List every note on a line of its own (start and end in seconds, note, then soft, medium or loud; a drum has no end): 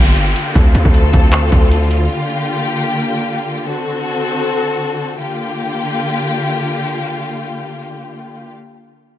0.00 0.34 G1 loud
0.00 5.16 D3 medium
0.00 0.54 A#3 medium
0.00 0.54 F4 medium
0.00 0.54 G4 medium
0.00 downlifter medium
0.17 closed hi-hat medium
0.36 closed hi-hat medium
0.55 0.74 D2 loud
0.55 2.09 C4 medium
0.55 3.62 F4 medium
0.55 2.09 A4 medium
0.55 kick loud
0.55 closed hi-hat medium
0.75 0.85 D2 loud
0.75 closed hi-hat medium
0.85 1.12 D2 loud
0.85 kick medium
0.94 closed hi-hat medium
1.13 1.51 D2 loud
1.13 kick loud
1.13 closed hi-hat medium
1.20 closed hi-hat soft
1.26 closed hi-hat soft
1.33 clap loud
1.33 closed hi-hat medium
1.52 2.08 D2 loud
1.52 kick loud
1.52 closed hi-hat medium
1.71 closed hi-hat medium
1.91 closed hi-hat medium
2.10 3.63 A#3 medium
2.10 3.63 G4 medium
3.65 5.18 C4 medium
3.65 5.18 F#4 medium
3.65 5.18 A4 medium
5.20 8.51 D3 medium
5.20 8.51 A#3 medium
5.20 8.50 F4 medium
5.20 8.50 G4 medium